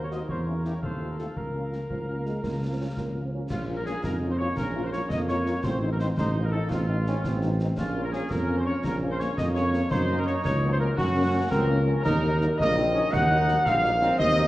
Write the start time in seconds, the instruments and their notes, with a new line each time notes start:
Already playing: tuba D#2, woodwind section A#4 C5
0.03 trumpet section C#5
0.11 french horn section A#3 C4 F#4, trumpet section D#5, snare
0.28 tuba E2, woodwind section A#4 C#5, trumpet section C5, concert bass drum
0.47 french horn section A#3 C#4 E4
0.57 trumpet section A#4
0.65 french horn section A#3 C#4 E4, trumpet section G4, snare
0.82 tuba D#2, woodwind section A4 F5, trumpet section C5, concert bass drum
1.00 french horn section A3 C4 F4
1.11 trumpet section A#4
1.18 french horn section A3 C4 F4, trumpet section A4, snare
1.36 tuba C#2, woodwind section A#4 F5, trumpet section A#4, concert bass drum
1.54 french horn section A#3 C#4 F4
1.72 french horn section A#3 C#4 F4, snare
1.90 tuba C#2, euphonium F3, concert bass drum
2.08 french horn section A#3 C#4 F4
2.18 euphonium A#3
2.26 euphonium G#3, french horn section A#3 C#4 F4, snare
2.43 tuba C#2, euphonium A#3, concert bass drum, snare
2.62 french horn section A#3 C#4 F4
2.71 euphonium C4
2.79 french horn section A#3 C#4 F4, euphonium C#4
2.97 tuba C#2, euphonium A#3, concert bass drum, snare
3.15 french horn section A#3 C#4 F4
3.25 euphonium C4
3.33 french horn section A#3 C#4 F4, euphonium C#4
3.50 tuba A#1, woodwind section F4, trumpet section F4, concert bass drum, snare, crash
3.68 french horn section A#3 C#4 F4
3.77 woodwind section A#4, trumpet section A#4
3.85 french horn section A#3 C#4 F4, woodwind section G#4, trumpet section G#4, snare
4.03 tuba F2, trombone section D#4, trumpet section A#4, woodwind section A#4, concert bass drum, snare
4.22 french horn section A#3 C#4 F4
4.30 woodwind section C5, trumpet section C5
4.38 french horn section A#3 C#4 F4, trumpet section C#5, woodwind section C#5
4.56 tuba A#1, trombone section C#4, trumpet section A#4, woodwind section A#4, concert bass drum, snare
4.75 french horn section A#3 C#4 F4
4.84 woodwind section C5, trumpet section C5
4.92 french horn section A#3 C#4 F4, woodwind section C#5, trumpet section C#5, snare
5.09 tuba F2, trombone section A#3, woodwind section D#5, trumpet section D#5, concert bass drum, snare
5.28 french horn section A#3 C#4 F4, trumpet section C#5, woodwind section C#5, snare
5.46 french horn section A#3 C#4 F4, snare
5.63 tuba A1, trombone section C4, woodwind section C5, trumpet section C5, concert bass drum, snare
5.82 french horn section F3 C4 D#4
5.91 woodwind section A#4, trumpet section A#4
5.99 french horn section F3 C4 D#4, woodwind section C5, trumpet section C5, snare
6.17 tuba A1, trombone section D#4, woodwind section C5, trumpet section C5, concert bass drum, snare
6.36 french horn section F3 C4 D#4
6.43 woodwind section A#4, trumpet section A#4
6.51 french horn section F3 C4 D#4, trumpet section A4, woodwind section A4
6.69 tuba A1, trombone section C4, woodwind section F4, trumpet section F4, concert bass drum, snare
6.89 french horn section F3 C4 D#4, trombone section A3
7.07 french horn section F3 C4 D#4, trombone section C#4, snare
7.24 tuba A1, trombone section C4, concert bass drum, snare
7.42 french horn section F3 C4 D#4, snare
7.60 french horn section F3 C4 D#4, snare
7.76 tuba A#1, trombone section C#4, woodwind section F4, trumpet section F4, concert bass drum, snare, crash
7.95 french horn section F3 A#3 C#4
8.03 woodwind section A#4, trumpet section A#4
8.12 french horn section F3 A#3 C#4, woodwind section G#4, trumpet section G#4, snare
8.29 tuba F2, woodwind section A#4, trumpet section A#4, concert bass drum, snare
8.48 french horn section F3 A#3 C#4
8.57 woodwind section C5, trumpet section C5
8.65 french horn section F3 A#3 C#4, woodwind section C#5, trumpet section C#5
8.84 tuba A#1, woodwind section A#4, trumpet section A#4, concert bass drum, snare
9.02 french horn section F3 A#3 C#4
9.10 woodwind section C5, trumpet section C5
9.19 french horn section F3 A#3 C#4, woodwind section C#5, trumpet section C#5, snare
9.38 tuba F2, trombone section A#3, woodwind section D#5, trumpet section D#5, concert bass drum, snare
9.54 french horn section F3 A#3 C#4, woodwind section C#5, trumpet section C#5, snare
9.74 french horn section F3 A#3 C#4, snare
9.90 tuba F#2, trombone section D#4, woodwind section C5, trumpet section C5, concert bass drum, snare
10.09 french horn section F#3 A#3 C#4
10.18 woodwind section A#4, trumpet section A#4
10.26 french horn section F#3 A#3 C#4, woodwind section C#5, trumpet section C#5, snare
10.44 tuba C#2, woodwind section C#5, trumpet section C#5, concert bass drum, snare
10.62 french horn section F#3 A#3 C#4
10.71 woodwind section C5, trumpet section C5
10.79 french horn section F#3 A#3 C#4, trumpet section A#4, woodwind section A#4
10.97 tuba F#2, trombone section C#4, trumpet section F#4, woodwind section F#4, concert bass drum, snare
11.16 french horn section F#3 A#3 C#4
11.34 french horn section F#3 A#3 C#4
11.50 tuba C#2, trombone section C4, woodwind section A#4, trumpet section A#4, concert bass drum, snare
11.69 french horn section F#3 A#3 C#4, trombone section A#3
11.87 french horn section F#3 A#3 C#4, trombone section C#4
12.03 tuba D#2, trombone section D#4, trumpet section A#4, woodwind section A#4, concert bass drum, snare, crash
12.23 french horn section F#3 A#3 D#4
12.40 french horn section F#3 A#3 D#4, snare
12.58 tuba A#1, trombone section A#3, trumpet section D#5, woodwind section D#5, concert bass drum, snare
12.76 french horn section F#3 A#3 D#4, trombone section C4
12.94 french horn section F#3 A#3 D#4, trombone section C#4
13.11 tuba D#2, trombone section D#4, woodwind section F#5, trumpet section F#5, concert bass drum, snare
13.30 french horn section F#3 A#3 D#4
13.47 french horn section F#3 A#3 D#4, snare
13.65 tuba A#1, trombone section C4, trumpet section F5, woodwind section F5, concert bass drum, snare
13.83 french horn section F#3 A#3 D#4, trombone section A#3, snare
14.01 french horn section F#3 A#3 D#4, trombone section C4, snare
14.18 tuba D#2, trumpet section D#5, woodwind section D#5, concert bass drum, snare
14.37 french horn section F#3 C4 D#4